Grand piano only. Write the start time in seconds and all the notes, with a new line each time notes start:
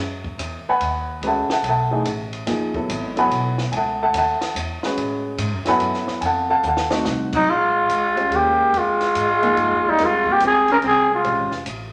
0.69 B4 F#5 G#5 B5
1.23 G#3 C#4 F#4 B4 A5
1.27 A4 E5 F#5
1.52 A4 E5 F#5 A5
1.69 A4 E5 F#5 A5
1.91 E3 A3 D#4 G#4
2.47 F3 A#3 D#4 G#4
2.75 F#3 B3 E4 A4
3.16 F#3 B3 E4 A4 B4 F#5 G#5 B5
3.72 G#5
3.77 A4 E5 F#5 A5
4.03 A4 E5 F#5 A5
4.17 A4 E5 F#5 A5
4.85 G#3 C#4 F#4 B4
5.67 F#3 B3 E4 A4 B4 F#5 G#5 B5
6.21 G#5
6.25 A4 F5 F#5 A5
6.50 A4 F5 F#5 A5
6.67 A4 F5 F#5 A5
6.91 A3 C4 D#4 F#4
8.16 G#3 C#4 G4 C5
9.42 F3 A#3 D#4 G#4
9.99 G3 C4 F4 A#4
11.24 G#3 C#4 G4 C5